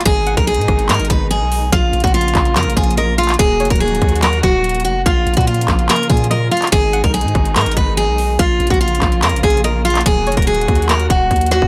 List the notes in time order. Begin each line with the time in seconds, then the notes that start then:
0.01 closed hi-hat
0.05 G#1 B2 D#3 G#3 D#4 G#4, kick, closed hi-hat
0.27 F#5, closed hi-hat
0.37 B1 A#4, kick
0.47 G#4, closed hi-hat
0.54 G#2, closed hi-hat
0.61 closed hi-hat
0.68 G#1, kick, cross-stick, closed hi-hat
0.79 closed hi-hat
0.89 G#2 A#4, clap, closed hi-hat
0.94 closed hi-hat
0.99 G#1, closed hi-hat
1.05 closed hi-hat
1.10 G#1 B4, kick, closed hi-hat
1.31 G#4, closed hi-hat
1.41 B1
1.52 open hi-hat
1.72 A#1 C#3 F3 A#3 F4 F5, kick, closed hi-hat
1.93 A#1, closed hi-hat
2.00 A#1 F#4, kick, closed hi-hat
2.07 closed hi-hat
2.14 F4, closed hi-hat
2.21 closed hi-hat
2.28 closed hi-hat
2.35 A#1, kick, clap, closed hi-hat
2.45 closed hi-hat
2.56 F2 A#4, clap, closed hi-hat
2.63 A#1, closed hi-hat
2.70 closed hi-hat
2.77 A#1 G#4, kick, closed hi-hat
2.84 closed hi-hat
2.91 closed hi-hat
2.97 A#4 D#5, closed hi-hat
3.18 F4 F5, closed hi-hat
3.24 closed hi-hat
3.29 clap, closed hi-hat
3.34 closed hi-hat
3.39 D#1 D#3 F#3 F#4 G#4, kick, closed hi-hat
3.60 F1 C#5, closed hi-hat
3.65 closed hi-hat
3.70 D#1 A#4, kick, closed hi-hat
3.76 closed hi-hat
3.80 G#4, closed hi-hat
3.88 closed hi-hat
3.95 closed hi-hat
4.02 D#2, kick, closed hi-hat
4.09 closed hi-hat
4.16 closed hi-hat
4.22 A#4, clap, closed hi-hat
4.33 closed hi-hat
4.43 D#1 F#4, kick, closed hi-hat
4.64 closed hi-hat
4.69 closed hi-hat
4.75 closed hi-hat
4.80 closed hi-hat
4.85 F1 F#4, closed hi-hat
5.06 A#1 C#3 F3 A#3 F4 F5, kick, closed hi-hat
5.27 A#1, closed hi-hat
5.34 A#2 F#4, kick, closed hi-hat
5.41 closed hi-hat
5.47 F4, closed hi-hat
5.54 closed hi-hat
5.61 closed hi-hat
5.68 A#1, kick, clap, closed hi-hat
5.79 closed hi-hat
5.89 A#4, clap, closed hi-hat
5.96 closed hi-hat
6.03 closed hi-hat
6.09 A#2 G#4, kick, closed hi-hat
6.17 closed hi-hat
6.24 closed hi-hat
6.30 A#4 D#5, closed hi-hat
6.51 F4 F5, closed hi-hat
6.57 closed hi-hat
6.62 clap, closed hi-hat
6.67 closed hi-hat
6.72 G#1 B2 D#3 G#3 D#4 G#4, kick, closed hi-hat
6.93 F#5, closed hi-hat
7.04 B1 A#4, kick
7.14 G#4, closed hi-hat
7.21 G#2, closed hi-hat
7.28 closed hi-hat
7.35 G#1, kick, cross-stick, closed hi-hat
7.45 closed hi-hat
7.56 G#2 A#4, clap, closed hi-hat
7.61 closed hi-hat
7.66 G#1, closed hi-hat
7.71 closed hi-hat
7.77 G#1 B4, kick, closed hi-hat
7.97 G#4, closed hi-hat
8.08 B1
8.18 open hi-hat
8.39 A#1 C#3 F3 A#3 F4 F5, kick, closed hi-hat
8.60 A#1, closed hi-hat
8.67 A#1 F#4, kick, closed hi-hat
8.74 closed hi-hat
8.81 F4, closed hi-hat
8.88 closed hi-hat
8.95 closed hi-hat
9.02 A#1, kick, clap, closed hi-hat
9.12 closed hi-hat
9.22 F2 A#4, clap, closed hi-hat
9.29 A#1, closed hi-hat
9.36 closed hi-hat
9.43 A#1 G#4, kick, closed hi-hat
9.50 closed hi-hat
9.57 closed hi-hat
9.64 A#4 D#5, closed hi-hat
9.85 F4 F5, closed hi-hat
9.90 closed hi-hat
9.95 clap, closed hi-hat
10.01 closed hi-hat
10.06 D#1 D#3 F#3 F#4 G#4, kick, closed hi-hat
10.27 F1 C#5, closed hi-hat
10.32 closed hi-hat
10.37 D#1 A#4, kick, closed hi-hat
10.42 closed hi-hat
10.47 G#4, closed hi-hat
10.54 closed hi-hat
10.61 closed hi-hat
10.68 D#2, kick, closed hi-hat
10.75 closed hi-hat
10.82 closed hi-hat
10.89 A#4, clap, closed hi-hat
11.00 closed hi-hat
11.10 D#1 F#4, kick, closed hi-hat
11.31 D#2, kick, closed hi-hat
11.36 closed hi-hat
11.41 closed hi-hat
11.46 closed hi-hat
11.51 F#4, snare, closed hi-hat
11.62 F#1, kick